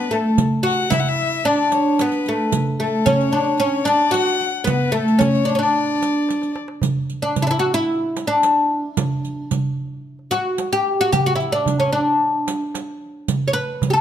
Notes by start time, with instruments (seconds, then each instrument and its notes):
Already playing: oud B3, violin B4
0.11 oud A3, violin A4, riq
0.38 riq, darbuka dum
0.63 oud F#4, violin F#5
0.90 oud E4, violin E5, riq, darbuka dum
1.00 violin F#5
1.05 violin E5, riq, darbuka ka
1.19 darbuka ka
1.45 oud D4, violin D5, riq
1.72 violin C#5, riq, darbuka tek
1.99 oud B3, violin B4, riq, darbuka tek
2.12 riq
2.26 oud A3, riq
2.52 riq, darbuka dum
2.80 oud A3, violin A4
3.06 oud C#4, violin C#5, riq, darbuka dum
3.21 riq, darbuka ka
3.32 oud D4, darbuka ka
3.60 oud C#4, violin C#5, riq
3.84 oud D4, violin D5, riq
4.11 oud F#4, violin F#5, riq, darbuka tek
4.28 riq
4.41 riq
4.64 oud B3, violin B4, riq, darbuka dum
4.92 oud A3, violin A4, darbuka ka
5.08 riq, darbuka ka
5.19 oud C#4, violin C#5, riq, darbuka dum
5.35 riq
5.45 oud D4, riq
5.55 oud C#4 D4
5.62 violin D5
5.76 darbuka ka
6.02 riq, darbuka tek
6.29 riq, darbuka tek
6.42 riq, darbuka ka
6.56 darbuka tek
6.68 darbuka ka
6.82 riq, darbuka dum
7.10 riq
7.22 oud D4
7.36 riq, darbuka dum
7.42 oud E4
7.47 oud D4 E4
7.59 oud F#4
7.64 darbuka ka
7.74 oud E4
8.16 riq, darbuka tek
8.27 oud D4
8.43 riq, darbuka tek
8.97 riq, darbuka dum
9.25 riq
9.51 riq, darbuka dum
9.78 darbuka ka
10.19 darbuka ka
10.31 oud F#4, riq, darbuka tek
10.58 riq, darbuka tek
10.73 oud G4
11.01 oud F#4
11.12 oud G4, riq, darbuka dum
11.26 oud F#4
11.36 oud E4
11.40 riq
11.52 oud D4
11.66 riq, darbuka dum
11.80 oud C#4
11.93 oud D4
12.47 riq, darbuka tek
12.75 riq, darbuka tek
13.28 riq, darbuka dum
13.48 oud C#5
13.53 oud B4
13.69 darbuka ka
13.82 riq, darbuka dum
13.90 oud G4 A4
13.96 riq, darbuka ka